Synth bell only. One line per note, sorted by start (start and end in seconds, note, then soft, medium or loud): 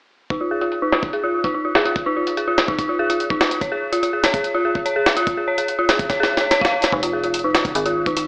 0.30 0.37 D#4 medium
0.41 0.50 F4 medium
0.51 0.61 G#4 medium
0.61 0.68 F4 medium
0.82 0.89 D#4 medium
0.92 1.02 F4 medium
1.13 1.17 G#4 medium
1.24 1.30 F4 medium
1.44 1.51 D#4 loud
1.54 1.61 D#4 medium
1.65 1.74 F4 medium
1.75 1.85 G#4 medium
1.85 1.92 F4 medium
2.06 2.13 D#4 loud
2.17 2.26 F4 medium
2.37 2.41 G#4 medium
2.48 2.54 F4 medium
2.68 2.75 D#4 medium
2.79 2.85 D#4 medium
2.89 2.99 F4 medium
2.99 3.09 G#4 medium
3.10 3.16 F4 medium
3.30 3.37 D#4 loud
3.41 3.50 F4 medium
3.61 3.65 C#5 medium
3.72 3.78 G#4 loud
3.92 3.99 F4 medium
4.03 4.09 F4 medium
4.13 4.23 G#4 medium
4.23 4.33 C#5 loud
4.34 4.40 G#4 medium
4.54 4.61 F4 medium
4.65 4.74 G#4 medium
4.86 4.89 C#5 medium
4.96 5.02 G#4 medium
5.17 5.23 F4 loud
5.27 5.33 F4 medium
5.37 5.47 G#4 medium
5.48 5.57 C#5 medium
5.58 5.64 G#4 medium
5.79 5.85 F4 medium
5.89 5.99 G#4 medium
6.10 6.14 C#5 medium
6.20 6.26 G#4 loud
6.41 6.47 C#5 medium
6.51 6.57 C#5 loud
6.61 6.68 F5 loud
6.72 6.78 C#5 medium
6.82 6.89 C#5 medium
6.93 6.99 D#4 medium
7.03 7.12 F4 medium
7.13 7.23 G#4 medium
7.24 7.30 F4 medium
7.44 7.51 D#4 loud
7.55 7.64 F4 medium
7.75 7.79 G#4 medium
7.86 7.92 F4 loud
8.06 8.13 D#4 medium
8.17 8.23 D#4 medium